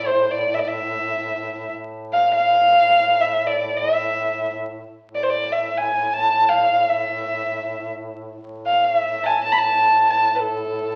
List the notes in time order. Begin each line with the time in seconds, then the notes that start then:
Already playing: A2
0.07 C5
0.31 D5
0.54 E5
0.59 D5
0.68 E5
1.70 A2
2.13 F5
2.34 F5
3.21 E5
3.46 D5
3.77 E5
5.04 A2
5.15 D5
5.23 C5
5.30 D5
5.52 E5
5.78 G#5
6.14 A5
6.49 F5
6.89 E5
8.39 A2
8.66 F5
8.84 E5
9.24 G#5 A5
9.44 A5
9.52 B5
9.58 A5
10.10 A5
10.35 B4
10.40 A4